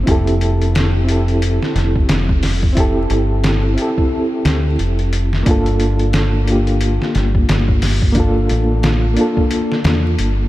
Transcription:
0.03 reed electric piano C4 E4, kick, closed hi-hat
0.07 fingered electric bass F1, reed electric piano G4 A4
0.27 closed hi-hat
0.41 closed hi-hat
0.62 closed hi-hat
0.75 snare, closed hi-hat
1.04 reed electric piano C4 E4
1.09 reed electric piano G4 A4, closed hi-hat
1.28 closed hi-hat
1.42 closed hi-hat
1.63 snare
1.75 fingered electric bass F1, snare, closed hi-hat
1.96 kick
2.09 fingered electric bass F1, snare, closed hi-hat
2.29 kick
2.43 snare, open hi-hat
2.63 kick
2.73 reed electric piano C4 E4
2.77 reed electric piano G4 A4, kick, closed hi-hat
3.10 fingered electric bass G1, closed hi-hat
3.44 snare, closed hi-hat
3.74 reed electric piano C4 E4, closed hi-hat
3.79 reed electric piano G4 A4
3.98 kick
4.45 fingered electric bass D2, snare, closed hi-hat
4.79 fingered electric bass F1, closed hi-hat
4.99 closed hi-hat
5.13 closed hi-hat
5.33 snare
5.43 fingered electric bass G1, reed electric piano A#3 D4, kick, closed hi-hat
5.48 reed electric piano F4 A4
5.66 closed hi-hat
5.80 closed hi-hat
5.99 closed hi-hat
6.13 snare, closed hi-hat
6.44 reed electric piano A#3 D4, closed hi-hat
6.49 reed electric piano F4 G4
6.67 closed hi-hat
6.81 closed hi-hat
7.02 snare
7.15 fingered electric bass G1, snare, closed hi-hat
7.35 kick
7.49 fingered electric bass G1, snare, closed hi-hat
7.68 kick
7.82 snare, open hi-hat
8.02 kick
8.12 reed electric piano A#3 D4, kick, closed hi-hat
8.17 reed electric piano F4 A4
8.49 fingered electric bass A1, closed hi-hat
8.83 snare, closed hi-hat
9.14 reed electric piano A#3 D4, closed hi-hat
9.19 reed electric piano F4 A4
9.37 kick
9.51 closed hi-hat
9.72 snare
9.84 fingered electric bass E2, snare, closed hi-hat
10.18 fingered electric bass G1, closed hi-hat

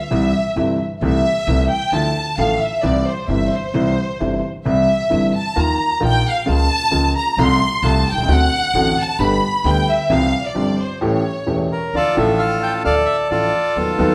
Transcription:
Already playing: violin section E5
0.11 grand piano C2 C3 E3 G3 E4, upright bass C2
0.56 upright bass G1, grand piano G1 G2 C3 E3 G3 E4
1.01 upright bass C2, grand piano C2 C3 E3 A3 E4, violin section E5
1.47 upright bass C2, grand piano C2 C3 E3 A3 E4
1.72 violin section G5
1.92 upright bass D2, grand piano D2 D3 F3 A3 E4, violin section A5
2.38 upright bass A1, grand piano A1 A2 D3 F3 A3 E4, violin section F5
2.61 violin section E5
2.83 grand piano C2 C3 E3 G3 E4, upright bass C2, violin section D5
3.07 violin section C5
3.28 upright bass G1, grand piano G1 G2 C3 E3 G3 E4, violin section E5
3.52 violin section C5
3.74 upright bass C2, grand piano C2 C3 E3 G3 E4
4.20 grand piano G1 G2 C3 E3 G3 E4, upright bass G1
4.65 grand piano C2 C3 E3 G3 E4, upright bass C2, violin section E5
5.10 grand piano G1 G2 C3 E3 G3 E4, upright bass G1
5.37 violin section A5
5.56 grand piano D#2 D#3 F3 A#3 F4, upright bass D#2, violin section A#5
6.00 grand piano A#1 A#2 D#3 F3 A#3 F4, upright bass A#1
6.05 violin section G5
6.28 violin section F5
6.46 grand piano C#2 C#3 F3 A#3 F4, upright bass C#2
6.51 violin section A5
6.91 grand piano C#2 C#3 F3 A#3 F4, upright bass C#2
7.17 violin section A#5
7.37 upright bass C2, grand piano C2 C3 F3 A3 F4, violin section C6
7.83 upright bass C2, grand piano C2 C3 F3 A3 F4, violin section A5
8.10 grand piano B1, upright bass B1, violin section G5
8.17 upright bass C2, grand piano C2
8.22 upright bass C#2, grand piano C#2
8.28 upright bass D2, grand piano D2 D3 A3 C4 F#4, violin section F#5
8.74 upright bass A1, grand piano A1 A2 D3 A3 C4 F#4
9.00 violin section A5
9.19 upright bass G1, grand piano G1 G2 D3 G3 B3 G4, violin section B5
9.64 upright bass D2, grand piano D2 D3 G3 B3 G4, violin section G5
9.89 violin section E5
10.10 upright bass C2, grand piano C2 C3 F3 G3 C4 G4, violin section F5
10.46 violin section D5
10.54 grand piano G1 G2 F3 G3 C4 G4, upright bass G1
10.80 violin section C5
11.01 grand piano A1 A2 E3 A3 C#4 G4, violin section C#5
11.47 grand piano E1 E2 E3 A3 C#4 G4
11.72 bandoneon A#4
11.94 upright bass D2, grand piano D2 D3 F3 A3 D4 A4, bandoneon F4 A4 D5
12.15 grand piano A1 A2 F3 A3 D4 A4, upright bass A1, bandoneon E5
12.39 bandoneon F5
12.63 bandoneon G5
12.84 grand piano D2 D3 F3 A3 D4 A4, upright bass D2, bandoneon A4 D5 F5
13.06 bandoneon E5
13.29 upright bass A1, grand piano A1 A2 F3 A3 D4 A4, bandoneon F4 A4 D5
13.76 upright bass D#2, grand piano D#2 D#3 F#3 B3 D#4 A4
13.97 grand piano D#2 D#3 F#3 B3 D#4, upright bass D#2
14.01 grand piano A4

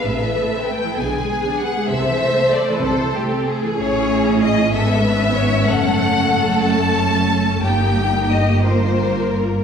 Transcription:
Already playing: violin section B4
0.04 double bass section A1, cello section A2, viola section C3 A4, violin section E5
0.22 viola section E3
0.38 viola section A3
0.54 viola section C4
0.68 viola section A3, violin section G5
0.86 viola section E3
0.98 double bass section B1, cello section B2, viola section D3 G#4, violin section G#4 G#5
1.17 viola section G#3
1.32 viola section B3
1.47 viola section D4
1.58 violin section F#5
1.62 viola section B3
1.77 viola section G#3
1.89 double bass section C2, cello section C3, violin section C5 E5
1.93 viola section C3 A4
2.09 viola section E3
2.25 viola section A3
2.39 viola section C4
2.52 viola section A3, violin section D5
2.69 viola section E3, violin section B4
2.82 double bass section C2, cello section C3, viola section C3, violin section A4 C5
2.99 viola section E3
3.15 viola section A3, violin section G4
3.31 viola section C4
3.46 viola section A3, violin section G#4
3.62 viola section E3
3.77 double bass section A1, cello section A2, viola section C#4 E4, violin section C#5
4.41 violin section D#5
4.73 double bass section G#1, cello section G#2, viola section B3 C#4, violin section A4 E5
5.05 violin section B4
5.35 violin section C#5
5.67 double bass section F#1, cello section F#2, viola section A3, violin section A4 F#5
6.63 viola section C#4, violin section A5
7.63 double bass section G1, cello section G2, viola section A#3 D#4, violin section G4 G5
8.31 violin section D#5
8.63 viola section F4, violin section A#4 C5
9.33 violin section A#4

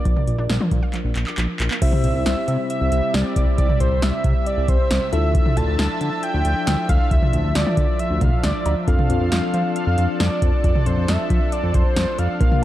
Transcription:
Already playing: tine electric piano D4 F4 A#4, analog synth lead D5
0.05 analog synth bass A#1, synth arpeggio sound F3, kick, closed hi-hat
0.16 synth arpeggio sound A#3, mid tom
0.27 analog synth bass A#1, closed hi-hat
0.38 analog synth bass A#1, synth arpeggio sound D4
0.50 analog synth bass A#1, synth arpeggio sound F3, snare, closed hi-hat
0.61 synth arpeggio sound F4, mid tom
0.71 analog synth bass A#2, synth arpeggio sound F3, kick, closed hi-hat
0.83 synth arpeggio sound F5
0.94 synth arpeggio sound F3, clap, closed hi-hat
1.05 analog synth bass A#1
1.15 analog synth bass A#1, synth arpeggio sound F3, clap, closed hi-hat
1.27 synth arpeggio sound D6, clap
1.38 analog synth bass A#1, synth arpeggio sound F3, clap, closed hi-hat
1.60 analog synth bass A#1, clap, closed hi-hat
1.71 synth arpeggio sound A#3, clap
1.82 analog synth bass C2, analog synth pad C3 G3 E5, tine electric piano C4 E4 G4 C5, analog synth lead E5, kick, closed hi-hat, crash
1.93 mid tom
2.04 analog synth bass C2, closed hi-hat
2.15 analog synth bass C2
2.26 analog synth bass C2, snare, closed hi-hat
2.48 analog synth bass C3, closed hi-hat
2.70 analog synth lead E5, closed hi-hat
2.81 analog synth bass C2
2.92 analog synth bass C2, closed hi-hat
3.14 analog synth bass C2, analog synth lead D5, snare, closed hi-hat
3.36 analog synth bass C2, kick, closed hi-hat
3.58 analog synth bass C2, analog synth lead D5, kick, closed hi-hat
3.69 mid tom
3.80 analog synth bass C2, analog synth lead C5, closed hi-hat
3.91 analog synth bass C2
4.02 analog synth bass C2, analog synth lead E5, snare, closed hi-hat
4.24 analog synth bass C3, kick, closed hi-hat
4.46 analog synth lead D5, closed hi-hat
4.58 analog synth bass C2
4.68 analog synth bass C2, analog synth lead C5, kick, closed hi-hat
4.91 analog synth bass C2, snare, closed hi-hat
5.13 analog synth bass D2, analog synth pad F3 D4, tine electric piano D4 E4 F4 A4, analog synth lead E5, closed hi-hat
5.35 analog synth lead E5, kick, closed hi-hat
5.46 mid tom
5.57 analog synth bass D2, analog synth lead A5, closed hi-hat
5.68 analog synth bass D2
5.79 analog synth bass D2, snare, closed hi-hat
6.01 analog synth bass D3, closed hi-hat
6.23 analog synth lead G5, closed hi-hat
6.34 analog synth bass D2
6.45 analog synth bass D2, closed hi-hat
6.67 analog synth bass D2, snare, closed hi-hat
6.89 analog synth bass D2, analog synth lead F5, kick, closed hi-hat
7.11 analog synth bass D2, analog synth lead E5, kick, closed hi-hat
7.22 mid tom
7.33 analog synth bass D2, closed hi-hat
7.44 analog synth bass D2
7.55 analog synth bass D2, analog synth lead D5, snare, closed hi-hat
7.67 mid tom
7.77 analog synth bass D3, kick, closed hi-hat
7.99 analog synth lead E5, closed hi-hat
8.11 analog synth bass D2
8.21 analog synth bass D2, analog synth lead F5, kick, closed hi-hat, mid tom
8.44 analog synth bass D2, analog synth lead D5, snare, closed hi-hat
8.66 analog synth bass D2, closed hi-hat, cowbell
8.88 analog synth bass F2, tine electric piano C4 D4 F4 A4, analog synth pad A4, analog synth lead F5, kick, closed hi-hat
8.99 mid tom
9.10 analog synth bass F2, closed hi-hat
9.21 analog synth bass F2
9.32 analog synth bass F2, snare, closed hi-hat
9.54 analog synth bass F3, closed hi-hat
9.76 analog synth lead F5, closed hi-hat
9.87 analog synth bass F2
9.98 analog synth bass F2, closed hi-hat
10.20 analog synth bass F2, analog synth lead D5, snare, closed hi-hat
10.42 analog synth bass F2, kick, closed hi-hat
10.64 analog synth bass F2, analog synth lead D5, kick, closed hi-hat
10.75 mid tom
10.86 analog synth bass F2, analog synth lead C5, closed hi-hat
10.97 analog synth bass F2
11.08 analog synth bass F2, analog synth lead E5, snare, closed hi-hat
11.30 analog synth bass F3, kick, closed hi-hat
11.52 analog synth lead D5, closed hi-hat
11.63 analog synth bass F2
11.74 analog synth bass F2, analog synth lead C5, kick, closed hi-hat
11.97 analog synth bass F2, snare, closed hi-hat
12.19 analog synth bass F2, analog synth lead F5, closed hi-hat
12.41 analog synth bass A#1, analog synth pad A#3 F4, tine electric piano A#3 D4 F4 A#4, analog synth lead F5, kick, closed hi-hat
12.52 mid tom

